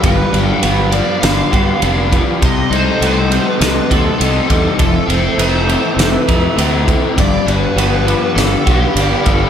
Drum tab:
RD |xxxxxxxx|xxxxxxxx|xxxxxxxx|xxxxxxxx|
SD |----o---|----o---|----o---|----o---|
BD |o----o-o|o----o-o|o----o-o|o----o-o|